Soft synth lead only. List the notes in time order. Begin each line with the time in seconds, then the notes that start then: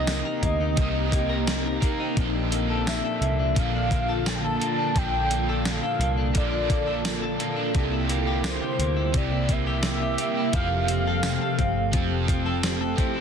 Already playing: D#5
0.45 D#5
2.88 E5
3.59 F5
4.28 A5
4.35 G5
4.42 A5
4.98 G5
5.60 G5
5.67 F5
6.37 D5
8.48 C5
9.17 D5
9.52 E5
10.55 F5